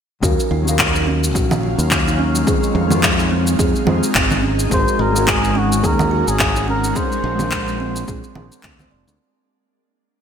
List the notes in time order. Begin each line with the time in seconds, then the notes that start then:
0.21 D#2 D#3 F#3 C#4 D#4 F#4 A#4 F5, kick, shaker
0.40 shaker
0.51 D#2 F4
0.63 F#3 C#4 D#4
0.68 A#4 F5, shaker
0.79 kick, clap, shaker
0.95 D#4, shaker
1.07 C#4
1.24 shaker
1.35 A#1 F#4, kick, shaker
1.51 low conga, shaker
1.63 F4
1.78 D#2, shaker
1.91 kick, clap, shaker
2.08 D#4, shaker
2.19 C#4
2.35 shaker
2.45 F3 G#3 C4 D#4 F4 G#4 C5, kick, shaker
2.63 shaker
2.75 F2 F4
2.87 G#3 C4, low conga
2.91 D#4 F4 C5, shaker
3.03 kick, clap, shaker
3.19 D#4, shaker
3.31 C4
3.47 shaker
3.59 F2 G#4, kick, shaker
3.76 shaker
3.85 F2 G#3 C4 D#4 F4 C5, low conga
4.03 shaker
4.15 G#1, kick, clap, shaker
4.31 D#4, low conga, shaker
4.43 G#3 C#4 F#4
4.59 shaker
4.69 G#1 G#3 C#4 D#4 F#4 G#4 C5, kick, shaker
4.73 A#4
4.88 shaker
4.99 G#1 F#4 A#4
5.11 G#3 C#4 D#4
5.16 F#4 A#4, shaker
5.27 G#4, kick, clap, shaker
5.43 D#4, shaker
5.55 C#4 F#4
5.72 shaker
5.83 D#2 G#4 A#4, kick, shaker
5.99 low conga, shaker
6.11 F#4
6.28 G#1 G#4, shaker
6.39 kick, clap, shaker
6.56 D#4, shaker
6.68 C#4 A#4
6.84 shaker
6.94 G#3 A#3 C4 D4 F4 G#4 C5, kick, shaker
6.98 A#4
7.12 shaker
7.24 A#1 F4
7.36 G#3 C4 D4, low conga
7.40 F4 A#4, shaker
7.51 kick, clap, shaker
7.68 D4, shaker
7.80 C4
7.96 shaker
8.08 A#1 G#4, kick, shaker
8.24 shaker
8.35 A#1 D4, low conga
8.52 shaker
8.63 D2, kick, clap, shaker
8.77 G#3 C4 D4 F4, low conga, shaker
8.81 C5
8.91 F1 D5
9.07 D2, shaker